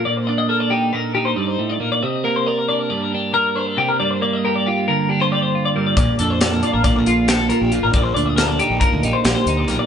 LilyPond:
<<
  \new Staff \with { instrumentName = "Clean electric guitar" } { \time 9/8 \key c \dorian \tempo 4. = 91 d''16 c''16 d''16 ees''16 bes'16 d''16 g'8 bes'8 g'16 c''16 d''16 c''8 d''16 bes'16 d''16 | ees''8 bes'16 c''16 d''16 bes'16 d''16 bes'16 d''16 bes'16 g'8 bes'8 c''16 a'16 g'16 bes'16 | d''16 c''16 d''16 ees''16 bes'16 d''16 g'8 bes'8 g'16 c''16 d''16 c''8 d''16 bes'16 d''16 | d''8 a'16 c''16 d''16 bes'16 d''16 bes'16 d''16 bes'16 f'8 a'8 bes'16 g'16 f'16 bes'16 |
d''16 c''16 d''16 ees''16 bes'16 d''16 g'8 bes'8 g'16 c''16 d''16 c''8 d''16 bes'16 d''16 | }
  \new Staff \with { instrumentName = "Clean electric guitar" } { \time 9/8 \key c \dorian << { r8 d'8 a'8 ees'4 ees'2 | r8 bes8 bes'8 d'4 d'8 bes'8 d'4~ | d'8 bes8 g'8 f'4 d'16 f'16 g'8 f'4 | r8 d'8 a'8 f'4 f'8 g'16 a'16 f'4 |
r8 d'8 a'8 ees'4 ees'8 g'8 ees'4 | } \\ { bes,2 bes,4 g,8 a,8 bes,8 | c2 g,2 c8 | g,2 d2 g,8 | bes,2 bes,2 bes,8 |
bes,2 bes,2 bes,8 | } >> }
  \new Staff \with { instrumentName = "Fingered electric bass" } { \clef bass \time 9/8 \key c \dorian r1 r8 | r1 r8 | r1 r8 | bes,,16 r16 f,4~ f,16 a,,8 bes,,16 bes,,4~ bes,,16 bes,,8 a,,16 |
bes,,8 d,4~ d,16 bes,,16 r16 d,16 bes,,16 r16 bes,,16 r16 d,8 ces,16 r16 | }
  \new DrumStaff \with { instrumentName = "Drums" } \drummode { \time 9/8 r4 r4 r4 r4. | r4 r4 r4 r4. | r4 r4 r4 r4. | <hh bd>8 hh8 <hh sn>8 hh8 <hh bd sn>8 hh8 <hh sn>8 hh8 hh8 |
<hh bd>8 hh8 <hh sn>8 hh8 <hh bd>8 hh8 <hh sn>8 hh8 <hh sn>8 | }
>>